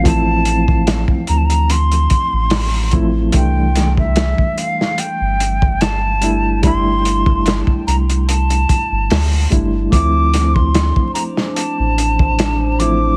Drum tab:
HH |x-x-x-xxxxx-o-x-|x-x-x-x-x-x-x-x-|x-x-x-xxxxx-o-x-|x-x-x-x-x-x-x-x-|
SD |----o-------o---|--o-o--o----o---|----o-------o---|--o-o--o----o---|
BD |o--o-o----o---o-|o--o-o-----o----|o--o-o----o---o-|o--o-o-----o----|